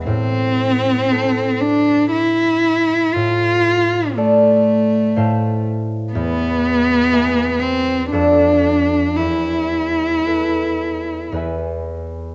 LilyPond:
<<
  \new Staff \with { instrumentName = "Harp" } { \time 3/4 \key a \minor \tempo 4 = 59 a,4 <a' c'' a''>2 | a,4 <a' d'' a''>4 <a, c'' f'' a''>4 | e,4 <b' e'' gis''>4 <f, a' d'' a''>4 | e,4 <a' b' a''>4 <e, b' e'' gis''>4 | }
  \new Staff \with { instrumentName = "Cello" } { \time 3/4 \key a \minor c'4. d'8 e'4 | f'4 a4. r8 | b4. c'8 d'4 | e'2 r4 | }
>>